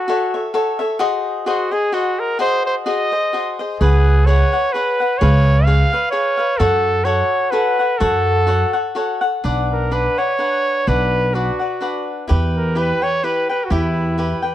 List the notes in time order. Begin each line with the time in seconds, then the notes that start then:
Already playing: F#4
0.08 F#4 A4 C#5 E5
0.34 A4 C#5 E5
0.54 F#4 A4 C#5 E5
0.79 A4 C#5 E5
0.99 F#4 G#4 C5 D#5
1.46 F#4 G#4 C5 D#5
1.71 G#4 C5 D#5
1.92 F#4 G#4 C5 D#5
2.19 A#4
2.39 F#4 G#4 C5 D#5
2.66 C5
2.86 F#4 G#4 C5 D#5
3.12 G#4 C5 D#5
3.33 F#4 G#4 C5 D#5
3.59 G#4 C5 D#5
3.80 C#2 G#4 B4 C#5 F#5
4.26 G#4 B4 C#5 F#5
4.53 B4 C#5 F#5
4.72 G#4 B4 C#5 F#5
5.00 B4 C#5 F#5
5.18 C#2 G#4 B4 C#5
5.22 F5
5.64 G#4 B4 C#5 F5
5.68 F5
5.93 B4 C#5 F5
6.11 G#4 B4 C#5 F5
6.37 B4 C#5 F5
6.58 F#2 F#4 A4 C#5 F#5
7.04 F#4 A4 C#5 F#5
7.51 F#4 A4 B4 C#5 F#5
7.79 A4 C#5 F#5
7.98 F#2 F#4 A4 C#5 F#5
8.47 F#4 A4 C#5 F#5
8.73 A4 C#5 F#5
8.95 F#4 A4 C#5 F#5
9.21 A4 C#5 F#5
9.44 B1 D4 B4 D5 F#5
9.72 A#4
9.91 D4 B4 D5 F#5
10.18 B4 C#5 D5 F#5
10.38 D4 B4 F#5
10.87 B1 D4 B4 D5 F#5
11.34 D4 F#4 B4 D5 F#5
11.59 B4 D5 F#5
11.81 D4 B4 D5 F#5
12.28 E2 E4 G4 B4 G5
12.57 A#4
12.75 E4 G4 B4 G5
13.02 G4 B4 C#5 G5
13.23 E4 G4 B4 G5
13.49 G4 B4 G5
13.64 F#4
13.70 E2 E4 G4 B4 G5
14.18 E4 G4 B4 G5
14.42 G4 B4 G5